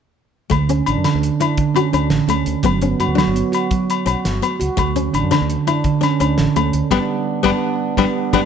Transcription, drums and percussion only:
0.51 kick medium
0.51 closed hi-hat medium
0.51 low agogo soft
0.69 closed hi-hat soft
0.86 closed hi-hat soft
0.86 low agogo medium
1.04 snare medium
1.04 closed hi-hat medium
1.04 low agogo medium
1.23 closed hi-hat soft
1.41 closed hi-hat soft
1.41 low agogo medium
1.58 kick medium
1.58 closed hi-hat medium
1.76 closed hi-hat soft
1.76 low agogo medium
1.94 closed hi-hat soft
1.94 low agogo medium
2.10 snare medium
2.10 closed hi-hat medium
2.29 closed hi-hat soft
2.29 low agogo medium
2.46 closed hi-hat soft
2.63 kick medium
2.63 closed hi-hat medium
2.63 low agogo medium
2.82 closed hi-hat soft
3.00 closed hi-hat soft
3.00 low agogo medium
3.18 snare medium
3.18 closed hi-hat medium
3.18 low agogo medium
3.36 closed hi-hat soft
3.53 closed hi-hat soft
3.53 low agogo medium
3.71 kick medium
3.71 closed hi-hat medium
3.90 closed hi-hat soft
3.90 low agogo medium
4.07 closed hi-hat soft
4.07 low agogo medium
4.25 snare medium
4.25 closed hi-hat medium
4.43 closed hi-hat soft
4.43 low agogo medium
4.61 closed hi-hat soft
4.78 kick medium
4.78 closed hi-hat medium
4.78 low agogo medium
4.96 closed hi-hat soft
5.14 closed hi-hat soft
5.14 low agogo medium
5.31 snare medium
5.31 closed hi-hat medium
5.31 low agogo medium
5.50 closed hi-hat soft
5.67 closed hi-hat soft
5.67 low agogo medium
5.84 kick medium
5.84 closed hi-hat medium
6.03 snare soft
6.03 closed hi-hat soft
6.03 low agogo medium
6.21 closed hi-hat soft
6.21 low agogo medium
6.38 snare medium
6.38 closed hi-hat medium
6.56 closed hi-hat soft
6.56 low agogo medium
6.73 closed hi-hat soft
6.91 kick medium
6.91 snare medium
6.91 low agogo medium
7.44 kick medium
7.44 snare medium
7.44 low agogo medium
7.97 kick medium
7.97 snare medium
7.97 low agogo medium
8.33 kick medium
8.33 snare medium
8.33 low agogo medium

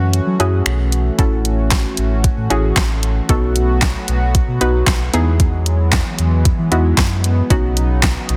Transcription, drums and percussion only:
0.13 closed hi-hat medium
0.40 closed hi-hat medium
0.66 finger snap loud
0.66 closed hi-hat medium
0.92 closed hi-hat medium
1.19 kick loud
1.19 closed hi-hat medium
1.45 closed hi-hat medium
1.71 kick loud
1.71 snare medium
1.71 clap loud
1.71 closed hi-hat medium
1.97 closed hi-hat medium
2.24 kick loud
2.24 closed hi-hat medium
2.50 closed hi-hat medium
2.76 kick loud
2.76 snare loud
2.76 clap loud
2.76 closed hi-hat medium
3.03 closed hi-hat medium
3.29 kick loud
3.29 closed hi-hat medium
3.56 closed hi-hat medium
3.82 kick loud
3.82 snare medium
3.82 clap loud
3.82 closed hi-hat medium
4.08 closed hi-hat medium
4.35 kick loud
4.35 closed hi-hat medium
4.61 closed hi-hat medium
4.87 kick loud
4.87 snare loud
4.87 clap loud
4.87 closed hi-hat medium
5.14 closed hi-hat medium
5.40 kick loud
5.40 closed hi-hat medium
5.66 closed hi-hat medium
5.92 kick loud
5.92 snare medium
5.92 clap loud
5.92 closed hi-hat medium
6.19 closed hi-hat medium
6.45 kick loud
6.45 closed hi-hat medium
6.72 closed hi-hat medium
6.97 kick loud
6.97 snare loud
6.97 clap loud
6.97 closed hi-hat medium
7.24 closed hi-hat medium
7.50 kick loud
7.50 closed hi-hat medium
7.77 closed hi-hat medium
8.03 kick loud
8.03 snare medium
8.03 clap loud
8.03 closed hi-hat medium
8.29 closed hi-hat medium

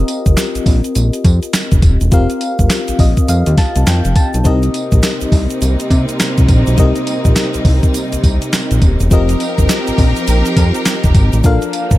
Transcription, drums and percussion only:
0.08 closed hi-hat medium
0.08 tambourine medium
0.26 kick loud
0.26 closed hi-hat soft
0.26 shaker medium
0.37 snare loud
0.37 clap medium
0.37 closed hi-hat medium
0.37 tambourine medium
0.37 shaker medium
0.55 closed hi-hat medium
0.55 shaker soft
0.66 kick loud
0.66 open hi-hat medium
0.66 tambourine medium
0.84 closed hi-hat medium
0.84 shaker soft
0.95 closed hi-hat medium
0.95 tambourine medium
0.95 shaker medium
1.13 closed hi-hat medium
1.13 shaker soft
1.24 kick medium
1.24 closed hi-hat medium
1.24 tambourine medium
1.43 closed hi-hat medium
1.43 shaker medium
1.53 snare loud
1.53 clap loud
1.53 closed hi-hat medium
1.53 tambourine loud
1.53 shaker medium
1.71 kick loud
1.71 closed hi-hat medium
1.71 shaker medium
1.82 kick loud
1.82 closed hi-hat medium
1.82 tambourine medium
2.01 closed hi-hat medium
2.01 shaker soft
2.12 kick loud
2.12 closed hi-hat medium
2.12 shaker medium
2.30 closed hi-hat medium
2.30 shaker soft
2.41 closed hi-hat medium
2.41 tambourine medium
2.59 kick medium
2.59 closed hi-hat soft
2.59 shaker medium
2.70 snare loud
2.70 clap medium
2.70 closed hi-hat medium
2.70 tambourine medium
2.70 shaker medium
2.88 closed hi-hat medium
2.88 shaker soft
2.99 kick loud
2.99 open hi-hat medium
2.99 tambourine medium
3.17 kick medium
3.17 closed hi-hat medium
3.17 shaker soft
3.28 closed hi-hat medium
3.28 tambourine medium
3.28 shaker medium
3.46 closed hi-hat medium
3.46 shaker medium
3.57 kick medium
3.57 snare medium
3.57 closed hi-hat medium
3.57 tambourine medium
3.76 closed hi-hat medium
3.76 shaker soft
3.87 snare loud
3.87 clap loud
3.87 closed hi-hat medium
3.87 tambourine loud
3.87 shaker medium
4.05 closed hi-hat medium
4.05 shaker medium
4.16 kick loud
4.16 closed hi-hat medium
4.16 tambourine medium
4.34 closed hi-hat medium
4.34 shaker soft
4.45 kick loud
4.45 closed hi-hat medium
4.45 shaker medium
4.63 closed hi-hat medium
4.63 shaker soft
4.74 closed hi-hat medium
4.74 tambourine medium
4.92 kick loud
4.92 closed hi-hat medium
4.92 shaker medium
5.03 snare loud
5.03 clap loud
5.03 closed hi-hat medium
5.03 tambourine medium
5.03 shaker medium
5.21 closed hi-hat medium
5.21 shaker soft
5.32 kick loud
5.32 open hi-hat medium
5.32 tambourine medium
5.50 closed hi-hat soft
5.50 shaker soft
5.62 closed hi-hat medium
5.62 tambourine medium
5.62 shaker medium
5.80 closed hi-hat medium
5.80 shaker soft
5.90 kick medium
5.90 closed hi-hat medium
5.90 tambourine medium
6.09 closed hi-hat medium
6.09 shaker soft
6.20 snare loud
6.20 clap loud
6.20 closed hi-hat medium
6.20 tambourine loud
6.20 shaker medium
6.38 kick loud
6.38 closed hi-hat medium
6.38 shaker soft
6.48 kick loud
6.48 closed hi-hat medium
6.48 tambourine medium
6.67 closed hi-hat medium
6.67 shaker soft
6.78 kick loud
6.78 closed hi-hat medium
6.78 shaker medium
6.96 closed hi-hat medium
6.96 shaker soft
7.07 closed hi-hat medium
7.07 tambourine medium
7.25 kick loud
7.25 closed hi-hat soft
7.25 shaker medium
7.36 snare loud
7.36 clap medium
7.36 closed hi-hat medium
7.36 tambourine medium
7.36 shaker medium
7.54 closed hi-hat medium
7.54 shaker soft
7.65 kick loud
7.65 open hi-hat medium
7.65 tambourine medium
7.83 kick medium
7.83 closed hi-hat soft
7.83 shaker medium
7.94 closed hi-hat medium
7.94 tambourine medium
7.94 shaker medium
8.12 closed hi-hat medium
8.12 shaker medium
8.24 kick medium
8.24 closed hi-hat medium
8.24 tambourine medium
8.42 closed hi-hat medium
8.42 shaker soft
8.53 snare loud
8.53 clap loud
8.53 closed hi-hat medium
8.53 tambourine loud
8.53 shaker medium
8.71 closed hi-hat medium
8.71 shaker soft
8.82 kick loud
8.82 closed hi-hat medium
8.82 tambourine medium
9.00 closed hi-hat medium
9.00 shaker medium
9.11 kick loud
9.11 closed hi-hat medium
9.11 shaker medium
9.29 closed hi-hat medium
9.29 shaker soft
9.40 closed hi-hat medium
9.40 tambourine medium
9.58 kick medium
9.58 closed hi-hat soft
9.58 shaker medium
9.69 snare loud
9.69 clap medium
9.69 closed hi-hat medium
9.69 tambourine medium
9.69 shaker medium
9.87 closed hi-hat medium
9.87 shaker medium
9.98 kick loud
9.98 open hi-hat medium
9.98 tambourine medium
10.16 closed hi-hat medium
10.16 shaker soft
10.28 closed hi-hat medium
10.28 tambourine medium
10.28 shaker medium
10.45 closed hi-hat medium
10.45 shaker medium
10.57 kick medium
10.57 closed hi-hat medium
10.57 tambourine medium
10.75 closed hi-hat medium
10.75 shaker soft
10.85 snare loud
10.85 clap loud
10.85 closed hi-hat medium
10.85 tambourine loud
10.85 shaker medium
11.04 kick loud
11.04 closed hi-hat medium
11.04 shaker medium
11.14 kick loud
11.14 closed hi-hat medium
11.14 tambourine medium
11.33 closed hi-hat medium
11.33 shaker medium
11.44 kick loud
11.44 closed hi-hat medium
11.44 shaker medium
11.62 closed hi-hat medium
11.62 shaker soft
11.73 closed hi-hat medium
11.73 tambourine medium
11.91 kick loud
11.91 closed hi-hat soft
11.91 shaker medium

